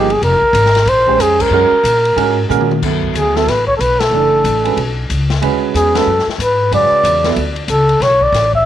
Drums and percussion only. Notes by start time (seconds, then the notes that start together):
0.10 ride
0.23 ride
0.42 kick
0.55 hi-hat pedal, ride
0.66 snare
0.75 snare, ride
0.87 ride
1.07 kick
1.20 hi-hat pedal, ride
1.39 kick, crash
1.85 hi-hat pedal, ride
2.05 ride
2.18 ride
2.50 hi-hat pedal, mid tom
2.61 mid tom
2.71 mid tom
2.82 kick, crash
3.02 kick
3.15 hi-hat pedal, ride
3.36 snare
3.48 snare, ride
3.68 kick
3.81 hi-hat pedal, ride
4.00 snare, ride
4.45 hi-hat pedal, ride
4.65 ride
4.77 ride
5.10 hi-hat pedal, ride
5.30 snare, ride
5.42 ride
5.75 hi-hat pedal, ride
5.95 snare, ride
6.19 snare
6.29 snare
6.40 hi-hat pedal, ride
6.72 ride
7.05 hi-hat pedal, ride
7.24 snare, ride
7.36 ride
7.56 ride
7.68 hi-hat pedal, ride
7.89 ride
8.01 snare, ride
8.21 kick
8.34 snare, hi-hat pedal, ride
8.54 kick